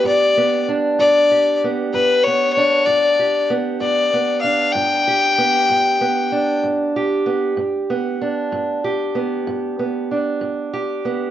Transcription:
<<
  \new Staff \with { instrumentName = "Fiddle" } { \time 12/8 \key g \major \tempo 4. = 64 d''4 r8 d''4 r8 b'8 cis''8 cis''8 d''4 r8 | d''4 f''8 g''2. r4. | r1. | }
  \new Staff \with { instrumentName = "Steel-string acoustic guitar" } { \time 12/8 \key g \major << { r8 b8 d'4 g'8 b4 b8 d'4 g'8 b8 | r8 b8 d'4 g'8 b4 b8 d'4 g'8 b8 | r8 b8 d'4 g'8 b4 b8 d'4 g'8 b8 | } \\ { g,4 r8 g,4 r8 g,4 r8 g,4 r8 | g,4 r8 g,4 r8 g,4 r8 g,4 r8 | g,4 r8 g,4 r8 g,4 r8 g,4 r8 | } >> }
>>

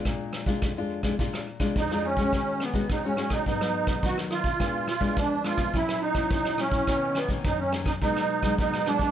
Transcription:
<<
  \new Staff \with { instrumentName = "Accordion" } { \time 4/4 \key ees \minor \tempo 4 = 106 r2. ees'8 des'8~ | des'8 ces'8 ees'16 des'8 ees'16 ees'4 ges'8 f'8~ | f'8 f'8 d'8 f'8 fes'8 ees'8 ees'8 des'8~ | des'8 b8 dis'16 cis'8 dis'16 ees'4 ees'8 d'8 | }
  \new Staff \with { instrumentName = "Nylon-string guitar" } { \time 4/4 \key ees \minor << { <aes d' f'>8. <aes d' f'>8 <aes d' f'>8 <aes d' f'>16 <aes d' f'>8 r16 <aes d' f'>8 <aes d' f'>8 <aes des' ges'>16~ | <aes des' ges'>8. <aes des' ges'>16 <aes des' ges'>16 <aes des' ges'>16 <aes des' ges'>8 <ges ces' ees'>16 <ges ces' ees'>8. <ges ces' ees'>8. r16 | <aes ces' d'>8 r16 <aes ces' d'>8. <aes ces' d'>8 <ges des' fes'>8. <ges des' fes'>8. <ges des' fes'>8 | <dis ais cis'>8. <dis ais cis'>8. <dis ais cis'>16 r16 <ges aes ees'>8. <ges aes ees'>8. <ges aes ees'>8 | } \\ { bes,4 f,4 bes,4 f,4 | ees4 bes,4 aes,4 ees4 | bes,4 f4 bes,4 bes,4 | b,4 fis,4 ces4 ces4 | } >> }
  \new DrumStaff \with { instrumentName = "Drums" } \drummode { \time 4/4 <hh bd ss>8 <hh ss>16 bd16 <hh bd ss>8 hh16 <bd ss>16 <hh bd>16 <hh ss>16 hh16 <hh bd ss>16 <hh bd>16 ss16 hh16 bd16 | <hh bd ss>16 hh16 <hh ss>16 <hh bd>16 <hh bd ss>8 <hh ss>16 <hh bd ss>16 <hh bd>16 <hh ss>16 hh16 <hh bd ss>16 <hh bd>16 <hh ss>16 <hh ss>16 <hh bd>16 | <hh bd ss>8 <hh ss>16 <hh bd>16 <hh bd ss>8 <hh ss>16 <hh bd ss>16 <hh bd>16 <hh ss>16 hh16 <bd ss>16 <hh bd>16 ss16 <hh ss>16 bd16 | <hh bd ss>16 hh16 <hh ss>16 <hh bd>16 <hh bd ss>8 <hh ss>16 <hh bd ss>16 <hh bd>16 <hh ss>16 hh16 <hh bd ss>16 <hh bd>16 <hh ss>16 <hh ss>16 <hh bd>16 | }
>>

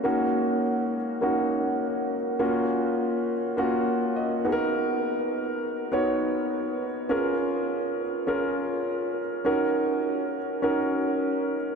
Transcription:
\new Staff \with { instrumentName = "Grand piano" } { \time 4/4 \key ees \minor \tempo 4 = 102 << { r1 | r2. ees''4 | r1 | r1 |
r1 | } \\ { <bes des' ees' ges'>4. r8 <bes des' ees' ges'>4. r8 | <bes des' f' ges'>4. r8 <bes des' f' ges'>4. <b dis' fis' aes' ais'>8~ | <b dis' fis' aes' ais'>4 r4 <b dis' fis' des''>4. r8 | <des' f' aes' bes'>4. r8 <des' f' aes' bes'>4. r8 |
<des' ees' ges' bes'>4. r8 <des' ees' ges' bes'>4. r8 | } >> }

